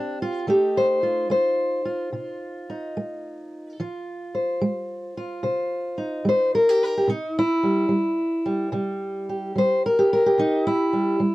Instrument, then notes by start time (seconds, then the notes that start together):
steel-string acoustic guitar
Already playing: E3 C4 D4 G4
0.22 F4
0.47 F3 A3 D#4 G4
0.77 C5
1.03 F4
1.30 A3 C5
1.85 F4
2.13 C3 F4
2.70 D#4
2.97 A3
3.80 F3 F4
4.34 C5
4.61 G#3
5.17 F4
5.43 C3 C5
5.98 D#4
6.25 G#3 C5
6.55 A#4
6.69 G4
6.83 A#4
6.97 G4
7.07 C3 D#4
7.39 E4
7.63 G3
7.89 G3
8.46 G3
8.72 C3 G3
9.29 G4
9.55 G3 C5
9.86 A#4
9.98 G4
10.13 A#4
10.26 G4
10.38 C3 D#4
10.67 E4
10.93 G3
11.20 G3